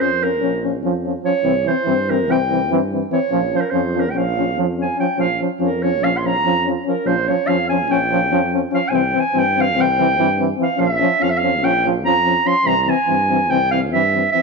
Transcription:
0.00 F2 F3 C#4 C5
0.22 F3 C#4 A#4
0.41 A#1 F3 C#4
0.64 F3 C#4
0.84 F2 F3 C#4
1.05 F3 C#4
1.24 F3 C#4 C#5
1.43 C2 E3 C4
1.66 E3 C4 C5
1.84 G2 E3 C4
2.08 E3 C4 A#4
2.29 C2 E3 C4 G5
2.51 E3 C4
2.71 G2 E3 C4
2.92 E3 C4
3.11 E3 C4 C#5
3.31 A#1 F3 C#4
3.54 F3 C#4 C5
3.61 A#4
3.70 F2 F3 C#4 C5
3.94 F3 C#4
4.00 A#4
4.10 G5
4.14 A#1 F3 C#4 F5
4.37 F3 C#4
4.57 F2 F3 C#4
4.78 F3 C#4 G#5
4.98 F3 C#4 G5
5.17 A#1 F3 C#4 F5
5.40 F3 C#4
5.60 F2 F3 C#4 A#4
5.82 F3 C#4 C#5
6.02 A#1 F3 C#4 F5
6.17 C6
6.24 F3 C#4 A#5
6.44 F2 F3 C#4
6.65 F3 C#4
6.85 F3 C#4 A#4
7.05 A#1 F3 C#4 C5
7.27 F3 C#4 C#5
7.47 F2 F3 C#4 F5
7.69 F3 C#4 G#5
7.89 A#1 F3 C#4 G5
8.12 F3 C#4
8.32 F2 F3 C#4
8.53 F3 C#4
8.72 F3 C#4 F5
8.88 C2 E3 C4 G#5
8.95 G5
9.13 E3 C4
9.20 G#5
9.34 G2 E3 C4
9.38 G5
9.57 E3 C4 F5
9.76 C2 E3 C4
9.81 G5
9.98 E3 C4
10.18 G2 E3 C4
10.38 E3 C4
10.57 E3 C4
10.63 F5
10.77 A#1 F3 C#4 F5
10.91 E5
11.00 F3 C#4
11.20 F2 F3 C#4 F5
11.30 E5
11.37 F5
11.42 F3 C#4
11.62 A#1 F3 C#4 G5
11.84 F3 C#4
12.05 F2 F3 C#4 A#5
12.26 F3 C#4
12.45 F3 C#4 C6
12.65 C2 E3 C4 A#5
12.82 A#5
12.87 E3 C4 G#5
13.07 G2 E3 C4
13.30 E3 C4
13.49 C2 E3 C4 G5
13.71 E3 C4 F5
13.92 G2 E3 C4 E5
14.14 E3 C4
14.32 E3 C4 E5

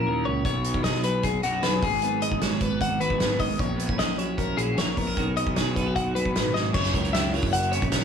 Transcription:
Already playing: A#2 F#3 C#4 E4 A#4
0.06 D#2 A#4
0.25 C#2 C#4 C#5
0.45 B1 B2 C#5, kick, closed hi-hat
0.64 D#4, closed hi-hat
0.74 kick
0.84 B1 G#4 D#5, snare, closed hi-hat
0.95 snare
1.03 F#3 F#4 B4, closed hi-hat
1.23 D#4 G#4, kick, closed hi-hat
1.43 B1 F#2 D#4 F#4, closed hi-hat
1.54 F#4
1.63 B1 G#4 B4, snare, closed hi-hat
1.82 G#1 G#2 G#4, kick, open hi-hat
2.02 B3, closed hi-hat
2.22 G#4 D#5, closed hi-hat
2.32 kick
2.41 G#1 G#3 F#4 C#5, snare, closed hi-hat
2.61 B3 B4, kick, closed hi-hat
2.81 D#3 F#4 F#5, kick, closed hi-hat
3.00 G#1 F#4 B4, closed hi-hat
3.10 G#4, kick
3.20 G#1 B3, snare, closed hi-hat
3.39 G#2 D#5, kick, open hi-hat
3.58 A#1 A#2 C#5, kick, closed hi-hat
3.77 B3, closed hi-hat
3.87 C#4, kick
3.98 A#1 G#4 D#5, snare, closed hi-hat
4.18 F#3 E4 C#5, closed hi-hat
4.37 C#4 A#4, kick, closed hi-hat
4.57 A#1 A#2 E4 G#4, closed hi-hat
4.77 A#1 A#4 C#5, snare, closed hi-hat
4.97 B3 A#4, kick, open hi-hat
5.07 C#4
5.17 B1 B2 F#3 D#4 F#4 A#4, kick, closed hi-hat
5.37 D#4 D#5, closed hi-hat
5.47 kick
5.56 B1 G#4 C#5, snare, closed hi-hat
5.76 F#3 D#4 B4, kick, closed hi-hat
5.87 F#4
5.96 D#4 F#5, kick, closed hi-hat
6.15 B1 F#2 F#4 B4, closed hi-hat
6.25 kick
6.35 G#1 A#2, snare, closed hi-hat
6.54 G#2 D#5, snare
6.74 F#1 F#2 E4 C#5, kick, crash
6.84 snare, closed hi-hat
6.94 C#2 A#4, kick, closed hi-hat
7.05 closed hi-hat
7.13 E4 E5, snare, closed hi-hat
7.33 F#3 A#4 C#5, open hi-hat
7.43 F#1, kick
7.53 E4 F#5, closed hi-hat
7.63 closed hi-hat
7.72 C#3 C#4 C#5, closed hi-hat
7.82 A#1, kick, closed hi-hat
7.92 A#4, snare, closed hi-hat

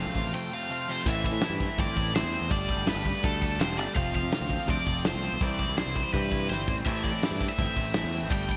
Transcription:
Already playing: F2 C3 F3 F5
0.00 A3 C4 F4
0.06 C2
0.15 A1 F2 C3 F3 A3 C4, kick, ride, tambourine
0.19 F4
0.25 snare
0.33 F2 C3 F3 A3 C4 F4 G5
0.51 F2 C3 F3 A3 C4 F4 F5
0.69 F2 C3 F3 A3 C4 F4
0.89 F2 C3 F3 A3 C4 F4 C5
1.06 A1 A2 E3 A3 C4 E4 E5, kick, crash
1.24 E3 E5, kick, ride, tambourine
1.32 A2
1.41 E3 A3 C4, snare, ride, tambourine
1.46 E4
1.50 G2
1.60 E3 A3 C4 E4, kick, ride
1.70 tambourine
1.77 G1 A2 E3 A3 C4 E4 D5, kick, ride
1.96 A1 A3 C4 E4, kick, ride, tambourine
2.13 E3 A3 C4 E4 C5, snare, ride, tambourine
2.23 E2
2.33 C4, ride, tambourine
2.41 E2, tambourine
2.50 G1 G3 A3 D4 G4 D5, kick, ride
2.68 G3, kick, ride, tambourine
2.76 G1
2.86 G3 A3 D4 G4 B4, snare, ride, tambourine
2.94 G1
3.05 G3 A3 D4 G4, kick, ride
3.14 tambourine
3.23 D2 G3 A3 D4 G4 A4, kick, ride
3.42 A3 D4 G4, kick, ride, tambourine
3.58 E1 G3 A3 D4 G4 C5, snare, ride, tambourine
3.77 G1 A3 D5, ride, tambourine
3.89 tambourine
3.94 F1 F2 C3 F3 A3 C4 F4 F5, kick, ride
4.14 F3 F5, kick, ride
4.23 F2
4.31 F3 A3 C4 F4, snare, ride, tambourine
4.41 D2
4.48 F3 A3 C4 F4, kick, ride
4.60 tambourine
4.66 D2 F2 C3 F3 A3 C4 F4, kick, ride
4.71 D5
4.85 F1 F3 A3 C4 F4, kick, ride, tambourine
5.03 F3 A3 C4, snare, ride, tambourine
5.07 F4 C5
5.14 C2
5.21 C4, ride, tambourine
5.31 B1, tambourine
5.41 C2 C3 E3 G3 C4 E4 D5, kick, ride, tambourine
5.49 tambourine
5.58 G3, kick, ride, tambourine
5.69 C2
5.76 E3 G3 C4 C5, snare, ride, tambourine
5.80 E4
5.87 C2
5.95 G3 C4 E4, kick, ride, tambourine
5.99 G3
6.03 tambourine
6.12 G2 C3 E3 C4 B4, kick, ride, tambourine
6.16 G3 C4 E4
6.22 tambourine
6.30 C4 E4, kick, ride, tambourine
6.34 G3
6.40 tambourine
6.49 G1 E3 G3 C4 E4 C5, snare, tambourine
6.59 tambourine
6.66 A1 C4, kick, tambourine
6.85 A1 A2 E3 A3 C4 E4 E5, kick, ride, crash
7.03 E3 D5, kick, ride, tambourine
7.12 A2
7.20 E3 A3 C4 E4, snare, ride, tambourine
7.31 G2
7.39 E3 C4 E4, kick, ride
7.43 A3
7.49 E5, tambourine
7.58 G1 A2 E3 A3 C4 E4, kick, ride
7.76 A1 A3 C4 E4, kick, ride, tambourine
7.94 E3 A3 C4, snare, ride, tambourine
7.98 E4
8.04 E2
8.12 C4, ride, tambourine
8.21 A1, tambourine
8.29 G1 G3 A3 D4 G4, kick, ride
8.33 G5
8.48 G3 G5, kick, ride, tambourine

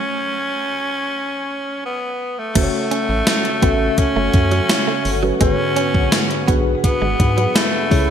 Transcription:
Already playing: C#4
1.86 B3
2.39 A3
2.55 F#1 C#3 A3 C#4 F#4 A4 C5 C#5 F#5 C#6, kick, closed hi-hat, crash
2.63 C#5
2.91 C#4, closed hi-hat
3.09 A1, muted clean electric guitar stroke
3.27 snare, closed hi-hat, tambourine
3.45 closed hi-hat
3.62 A1 B3 C#4 F#4 A4 E5, kick, closed hi-hat
3.98 C#4, kick, closed hi-hat
4.16 F#1 A3
4.34 F#2, muted clean electric guitar stroke, kick, closed hi-hat
4.51 F#3, closed hi-hat
4.69 snare, closed hi-hat, tambourine
4.87 A3
5.05 G1, muted clean electric guitar stroke, open hi-hat
5.23 F#3 C#4 F#4 A4 B4
5.40 G#1 G#2 D3 G#3 B3 C#4 F#4 G#4 B4 B5, kick, closed hi-hat
5.76 C#4, closed hi-hat
5.94 B1, muted clean electric guitar stroke, kick
6.12 snare, closed hi-hat, tambourine
6.31 closed hi-hat
6.47 B1 B3 D4 F#4 G#4 B4, kick, closed hi-hat
6.84 B3, kick, closed hi-hat
7.02 G#1 G#3
7.19 G#2, muted clean electric guitar stroke, kick, closed hi-hat
7.38 F#3, closed hi-hat
7.55 G#3 A3, snare, closed hi-hat, tambourine
7.90 C#2 C#3 G#3 C#4 E4 G#4 B4 C#5, muted clean electric guitar stroke, kick, open hi-hat

